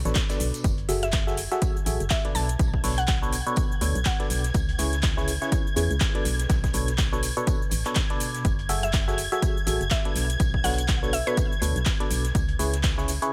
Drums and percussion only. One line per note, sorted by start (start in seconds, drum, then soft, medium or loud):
0.05 snare soft
0.05 closed hi-hat soft
0.05 shaker soft
0.15 kick loud
0.15 clap loud
0.15 closed hi-hat medium
0.15 tambourine medium
0.15 shaker soft
0.29 snare loud
0.29 closed hi-hat soft
0.29 tambourine medium
0.29 shaker soft
0.39 snare medium
0.39 open hi-hat loud
0.39 shaker medium
0.54 closed hi-hat medium
0.54 tambourine medium
0.54 shaker soft
0.64 kick loud
0.64 closed hi-hat medium
0.64 tambourine medium
0.64 shaker soft
0.78 closed hi-hat soft
0.89 snare soft
0.89 open hi-hat loud
0.89 tambourine medium
0.89 shaker medium
1.03 snare soft
1.03 closed hi-hat medium
1.03 shaker soft
1.12 kick loud
1.12 snare loud
1.12 clap loud
1.12 closed hi-hat medium
1.12 tambourine medium
1.12 shaker soft
1.28 snare medium
1.28 shaker soft
1.37 open hi-hat loud
1.37 tambourine medium
1.37 shaker medium
1.52 snare soft
1.52 closed hi-hat soft
1.52 shaker soft
1.62 kick loud
1.62 closed hi-hat medium
1.62 tambourine medium
1.62 shaker soft
1.77 shaker soft
1.86 open hi-hat loud
1.86 tambourine medium
1.86 shaker medium
2.00 closed hi-hat soft
2.00 shaker soft
2.10 kick loud
2.10 snare loud
2.10 clap loud
2.10 closed hi-hat medium
2.10 tambourine medium
2.10 shaker soft
2.25 closed hi-hat soft
2.35 snare medium
2.35 open hi-hat loud
2.35 tambourine medium
2.35 shaker medium
2.49 closed hi-hat medium
2.49 shaker soft
2.59 kick loud
2.59 closed hi-hat medium
2.59 tambourine medium
2.59 shaker soft
2.74 kick medium
2.84 open hi-hat loud
2.84 open hi-hat medium
2.84 shaker medium
2.98 closed hi-hat soft
2.98 shaker soft
3.08 kick loud
3.08 snare loud
3.08 clap loud
3.08 closed hi-hat medium
3.08 tambourine medium
3.08 shaker soft
3.23 shaker soft
3.33 open hi-hat loud
3.33 tambourine medium
3.33 shaker medium
3.47 closed hi-hat soft
3.47 shaker soft
3.56 kick loud
3.56 closed hi-hat medium
3.56 tambourine medium
3.56 shaker soft
3.72 shaker soft
3.81 open hi-hat loud
3.81 tambourine medium
3.81 shaker medium
3.95 closed hi-hat soft
3.95 shaker soft
4.05 kick loud
4.05 snare loud
4.05 clap loud
4.05 closed hi-hat medium
4.05 tambourine medium
4.05 shaker soft
4.20 snare soft
4.20 closed hi-hat soft
4.30 snare soft
4.30 open hi-hat loud
4.30 tambourine medium
4.30 shaker medium
4.44 snare soft
4.44 closed hi-hat medium
4.44 shaker soft
4.54 kick loud
4.54 closed hi-hat medium
4.54 tambourine medium
4.54 shaker soft
4.69 closed hi-hat soft
4.78 snare soft
4.78 open hi-hat loud
4.78 tambourine medium
4.78 shaker medium
4.93 snare soft
4.93 closed hi-hat soft
4.93 shaker soft
5.03 kick loud
5.03 snare loud
5.03 clap loud
5.03 closed hi-hat medium
5.03 tambourine medium
5.03 shaker soft
5.17 snare medium
5.17 shaker soft
5.28 open hi-hat loud
5.28 tambourine medium
5.28 shaker medium
5.42 snare soft
5.42 closed hi-hat soft
5.42 shaker soft
5.52 kick loud
5.52 closed hi-hat medium
5.52 tambourine medium
5.52 shaker soft
5.67 shaker soft
5.76 open hi-hat loud
5.76 tambourine medium
5.76 shaker medium
5.91 closed hi-hat soft
5.91 shaker soft
6.00 kick loud
6.00 snare loud
6.00 clap loud
6.00 closed hi-hat medium
6.00 tambourine medium
6.00 shaker soft
6.15 closed hi-hat soft
6.24 snare soft
6.24 open hi-hat loud
6.24 tambourine medium
6.24 shaker medium
6.39 snare soft
6.39 closed hi-hat medium
6.39 shaker soft
6.49 kick loud
6.49 snare medium
6.49 closed hi-hat medium
6.49 tambourine medium
6.49 shaker soft
6.64 kick medium
6.64 snare soft
6.64 closed hi-hat soft
6.64 shaker soft
6.73 open hi-hat loud
6.73 tambourine medium
6.73 shaker medium
6.88 snare soft
6.88 closed hi-hat soft
6.88 shaker soft
6.98 kick loud
6.98 snare loud
6.98 clap loud
6.98 closed hi-hat medium
6.98 tambourine medium
6.98 shaker soft
7.13 shaker soft
7.23 open hi-hat loud
7.23 tambourine medium
7.23 shaker medium
7.37 closed hi-hat soft
7.37 shaker soft
7.47 kick loud
7.47 closed hi-hat medium
7.47 tambourine medium
7.47 shaker soft
7.62 shaker soft
7.71 open hi-hat loud
7.71 tambourine medium
7.71 shaker medium
7.85 clap soft
7.85 closed hi-hat soft
7.85 shaker soft
7.95 kick loud
7.95 snare loud
7.95 clap loud
7.95 closed hi-hat medium
7.95 tambourine medium
7.95 shaker soft
8.10 snare soft
8.10 closed hi-hat soft
8.20 snare soft
8.20 open hi-hat loud
8.20 tambourine medium
8.20 shaker medium
8.35 snare soft
8.35 closed hi-hat soft
8.35 shaker soft
8.45 kick loud
8.45 closed hi-hat medium
8.45 tambourine medium
8.45 shaker soft
8.59 closed hi-hat soft
8.69 snare soft
8.69 open hi-hat loud
8.69 tambourine medium
8.69 shaker medium
8.83 snare soft
8.83 closed hi-hat soft
8.83 shaker soft
8.93 kick loud
8.93 snare loud
8.93 clap loud
8.93 closed hi-hat medium
8.93 tambourine medium
8.93 shaker soft
9.08 snare medium
9.08 shaker soft
9.18 open hi-hat loud
9.18 tambourine medium
9.18 shaker medium
9.32 snare soft
9.32 closed hi-hat soft
9.32 shaker soft
9.42 kick loud
9.42 closed hi-hat medium
9.42 tambourine medium
9.42 shaker soft
9.57 shaker soft
9.67 open hi-hat loud
9.67 tambourine medium
9.67 shaker medium
9.81 closed hi-hat soft
9.81 shaker soft
9.91 kick loud
9.91 snare loud
9.91 clap loud
9.91 closed hi-hat medium
9.91 tambourine medium
9.91 shaker soft
10.05 closed hi-hat soft
10.16 snare medium
10.16 open hi-hat loud
10.16 tambourine medium
10.16 shaker medium
10.30 closed hi-hat soft
10.30 shaker soft
10.40 kick loud
10.40 closed hi-hat medium
10.40 tambourine medium
10.40 shaker soft
10.54 kick medium
10.64 open hi-hat medium
10.64 open hi-hat loud
10.64 shaker medium
10.78 closed hi-hat soft
10.78 closed hi-hat medium
10.78 shaker soft
10.88 kick loud
10.88 snare loud
10.88 clap loud
10.88 closed hi-hat medium
10.88 tambourine medium
10.88 shaker soft
11.04 shaker soft
11.13 open hi-hat loud
11.13 tambourine medium
11.13 shaker medium
11.27 closed hi-hat soft
11.27 shaker soft
11.37 kick loud
11.37 closed hi-hat medium
11.37 tambourine loud
11.37 shaker soft
11.52 shaker soft
11.62 open hi-hat loud
11.62 tambourine medium
11.62 shaker medium
11.76 closed hi-hat soft
11.76 shaker soft
11.86 kick loud
11.86 snare loud
11.86 clap loud
11.86 closed hi-hat medium
11.86 tambourine medium
11.86 shaker soft
12.00 snare soft
12.00 closed hi-hat soft
12.10 snare soft
12.10 open hi-hat loud
12.10 tambourine medium
12.10 shaker medium
12.25 snare soft
12.25 closed hi-hat medium
12.25 shaker soft
12.35 kick loud
12.35 closed hi-hat medium
12.35 tambourine medium
12.35 shaker soft
12.48 closed hi-hat soft
12.59 snare soft
12.59 open hi-hat loud
12.59 tambourine medium
12.59 shaker medium
12.73 snare soft
12.73 closed hi-hat medium
12.73 shaker soft
12.83 kick loud
12.83 snare loud
12.83 clap loud
12.83 closed hi-hat medium
12.83 tambourine medium
12.83 shaker soft
12.98 snare medium
12.98 shaker soft
13.08 open hi-hat loud
13.08 tambourine medium
13.08 shaker medium
13.22 closed hi-hat soft
13.22 shaker soft